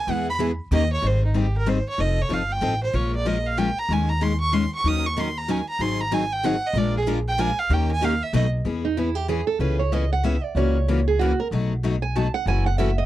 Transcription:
0.00 G#5
0.07 E2 E3 G#3 B3 E4 G#4 F#5
0.29 B5
0.39 E3 G#3 B3 E4 G#4
0.71 D#2 D#3 A#3 C#4 G4 A#4 D#5
0.92 C#5
1.02 G#1 D#3 G3 C4 D#4 G#4
1.06 C5
1.25 D#4
1.34 D#3 G3 C4 D#4 G4 G#4
1.57 A#4
1.66 D#3 G3 C4 D#4 G#4 C5
1.89 C#5
1.98 F1 F3 C4 D#4 A4 D#5
2.21 C#5
2.29 G1 F3 C4 D#4 A4
2.33 F5
2.52 G5
2.61 A1 F3 C4 D#4 A4
2.83 C5
2.93 A#1 F3 G#3 C#4 F4 A#4 C#5
3.15 D5
3.25 F3 G#3 C#4 F4 A#4 D#5
3.46 F5
3.57 F3 G#3 C#4 F4 A#4 G5
3.78 A#5
3.89 D#2 D#3 G#3 C#4 D#4 G#4 G#5
4.09 A#5
4.21 D#3 G#3 C#4 D#4 G#4 C6
4.40 C#6
4.52 D#3 G#3 C#4 D#4 G#4 C6
4.75 C#6
4.84 D#2 D#3 F#3 C#4 D#4 A#4 D#6
5.06 C#6
5.17 D#3 F#3 C#4 D#4 A#4 C6
5.38 A#5
5.48 D#3 F#3 C#4 D#4 A#4 G#5
5.69 A#5
5.79 G#1 D#3 F#3 C4 D#4 G#4 C6
6.00 A#5
6.11 D#3 F#3 C4 D#4 G#4 G#5
6.33 G5
6.44 D#3 F#3 C4 D#4 G#4 F#5
6.66 D#5
6.73 A#1 F3 G#3 D4 F4 A#4
6.78 D5
6.97 G#4
7.07 F3 G#3 D4 F4 A#4
7.28 G5
7.38 F3 G#3 D4 F4 A#4 G#5
7.58 F5
7.69 D#2 D#3 A#3 C#4 G4 A#4 G5
7.91 G#5
8.01 D#3 A#3 C#4 G4 A#4 F5
8.23 E5
8.33 B1 B2 F#3 A3 D#4 F#4 B4 D#5
8.65 E2 E3 B3 C#4 G#4
8.85 D#4
8.97 E3 B3 C#4 E4 G#4
9.15 G4
9.28 E3 B3 C#4 G#4
9.47 A4
9.59 C#2 C#3 E3 B3 C#4 G#4 B4
9.79 C#5
9.92 C#3 E3 B3 C#4 G#4 D#5
10.13 F#5
10.24 C#3 E3 B3 C#4 G#4 E5
10.44 D5
10.55 C#2 C#3 E3 A#3 C#4 F#4 C#5
10.88 C#3 E3 A#3 C#4 F#4
11.08 G#4
11.19 C#3 E3 A#3 C#4 F#4
11.40 A#4
11.51 B1 B2 F#3 A3 D#4 F#4
11.83 B2 F#3 A3 D#4 F#4
12.02 G#5
12.16 B2 F#3 A3 D#4 F#4 A5
12.34 F#5
12.46 F#1 C#3 E3 F#3 A3 C#4 E4 F#4 A4 G#5
12.66 F#5
12.78 C#3 E3 F#3 A3 C#4 E4 F#4 A4 E5
12.98 D#5

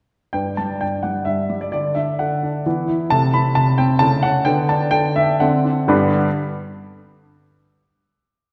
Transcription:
0.33 G2 D4 B4 G5
0.57 G3 A5
0.81 G2 G5
1.03 G3 F#5
1.25 G2 E5
1.50 G3
1.61 D5
1.72 D3 D4 A4 D5
1.95 D4 E5
2.19 D3 F#5
2.43 D4
2.66 E3 B3 E4
2.88 E4
3.10 C3 A3 E4 A5
3.34 C4 B5
3.55 C3 A5
3.78 C4 G5
3.99 C#3 A3 E4 A5
4.23 C#4 F#5
4.45 D3 B3 D4 G5
4.69 D4 A5
4.91 D3 G5
5.16 D4 E5
5.40 D3 C4 D4 F#5
5.65 D4
5.88 G2 D3 B3 D4 G4 B4 B5

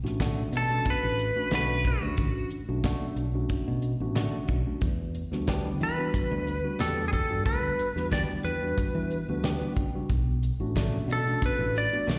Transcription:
0.03 A1 A3 C#4 D4 F#4, snare
0.20 B2 A3 D4 F#4, kick, snare, closed hi-hat, tambourine
0.52 B2, closed hi-hat
0.57 A4
0.70 A3 C#4 D4 F#4
0.85 kick, closed hi-hat
0.90 B4
1.03 A1
1.19 closed hi-hat
1.36 A3 C#4 D4 F#4
1.51 B1 B2 A3 D4 F#4, snare, closed hi-hat, tambourine
1.55 B4
1.84 F#4, kick, closed hi-hat
2.02 D2 A3 C#4 D4 F#4
2.17 A1, kick, closed hi-hat
2.50 muted fingered electric bass stroke, closed hi-hat
2.69 B1 A3 C#4 D4 F#4
2.84 B2 A3 D4 F#4, kick, snare, closed hi-hat, tambourine
3.16 B1, closed hi-hat
3.35 A3 C#4 D4 F#4
3.49 kick, closed hi-hat
3.68 B2
3.82 closed hi-hat
4.00 A1 A3 C#4 D4 F#4
4.16 B2 A3 D4 F#4, snare, closed hi-hat, tambourine
4.33 muted fingered electric bass stroke
4.48 B1, kick, closed hi-hat
4.67 A3 C#4 D4 F#4
4.81 E2, kick, closed hi-hat
5.15 closed hi-hat
5.32 D2 G3 B3 D4 F#4, snare
5.47 E3 B3 D4 G4, kick, snare, closed hi-hat, tambourine
5.81 E3 B4, closed hi-hat
5.99 G3 B3 D4 F#4
6.14 kick, closed hi-hat
6.32 D2
6.47 closed hi-hat
6.64 G3 B3 D4 F#4
6.79 E2 E3 B3 D4 G4 A4, snare, closed hi-hat, tambourine
7.08 G#4
7.13 A4, kick, closed hi-hat
7.30 G2 G3 B3 D4 F#4
7.46 D2 B4, kick, closed hi-hat
7.78 muted fingered electric bass stroke, closed hi-hat
7.96 E2 G3 B3 D4 F#4, snare
8.12 E3 B3 D4 G4 D5, kick, snare, closed hi-hat, tambourine
8.44 E2 B4, closed hi-hat
8.62 G3 B3 D4 F#4
8.78 kick, closed hi-hat
8.95 E3
9.11 closed hi-hat
9.29 D2 G3 B3 D4 F#4
9.44 E3 B3 D4 G4, snare, closed hi-hat, tambourine
9.61 muted fingered electric bass stroke
9.76 C#2, kick, closed hi-hat
9.95 G3 B3 D4 F#4
10.09 B1, kick, closed hi-hat
10.43 closed hi-hat
10.60 A1 A3 C#4 D4 F#4
10.76 B2 F#3 A3 D4, kick, snare, closed hi-hat, tambourine
11.08 B2, closed hi-hat
11.12 A4
11.27 A3 C#4 D4 F#4
11.42 B4, kick, closed hi-hat
11.59 A1
11.76 D5, closed hi-hat
11.93 A3 B3 D4 F#4
12.07 B1 B2 F#3 A3 D4, snare, closed hi-hat, tambourine

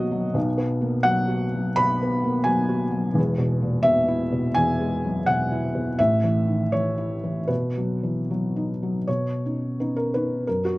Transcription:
Already playing: B2 E3 F#3 A#3 B3 F#4 C#5 D#5 F#5
0.12 F#3
0.34 B1 B2
0.58 B3
0.81 A#3
1.03 F#3 F#5
1.28 F#4
1.55 F#3
1.76 B2 B5
2.03 B3
2.24 A#3
2.44 F#3 G#5
2.69 F#4
2.91 F#3
3.14 E1 E2
3.38 B2
3.62 A#2
3.83 B2 E5
4.08 E4
4.32 B2
4.54 E2 G#5
4.80 G#3
5.04 F#3
5.26 B2 F#5
5.51 E4
5.75 B2
5.99 A1 A2 E5
6.24 E3
6.47 D#3
6.72 E3 C#5
6.98 E4
7.24 E3
7.48 B2 B4
7.78 F#3
8.03 E3
8.31 F#3
8.56 D#4
8.83 F#3
9.07 B2 C#5
9.46 C#4 D#4
9.80 B3 C#4 D#4
9.96 A#4
10.14 C#4 D#4 B4
10.47 F#2 A#4
10.65 F#4

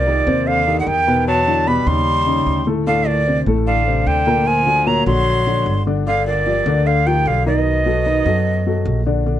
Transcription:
Already playing: C2 A#2 D5
0.07 D#3 D#4 G4
0.27 D#2 C3 C4 C5
0.47 D3 F5
0.67 D#3 D#4 G4
0.80 D3 F#5
0.87 E2 D#3 G5
1.07 B2 B3 B4
1.28 F#3 A5
1.47 D3 D4 E4
1.67 B2 G3 B3 B4 B5
1.87 D#2 C#3 G3 C#4 D#4 C6
2.27 C#3 C#4 D#4
2.47 D2
2.67 A2 A3 A4
2.87 A2 D3 A3 A4 F5
3.07 A#2 D5
3.27 C3 C4 D4
3.46 A1 A2 A3 A4
3.67 D3 F5
3.87 C3 C4 D4
4.06 D2 D3 G5
4.27 A#2 A#3 A#4
4.46 F3 G#5
4.66 D3 D4 F#4
4.86 A#2 F#3 A#3 A#4 A#5
5.06 A#1 D3 F#3 D4 F#4 C6
5.46 D3 D4 F#4
5.66 G1
5.87 D3 D4 D5
6.06 D3 D4 D5 F5
6.27 A#2 D5
6.46 F3 F4 G4
6.66 D2 D3 D4 D5
6.86 D3 F5
7.06 D#3 F3 F4 G4 G5
7.26 B1 D3 F5
7.46 B2 D#3 D#4 D#5
7.86 F#3 F#4 A4
8.06 D#3 D#4 D#5
8.26 F#2 F#3 F#4 A4
8.66 F#3 F#4 A4
8.85 A#1
9.06 D3 D4 D5
9.26 D3 D4 D5

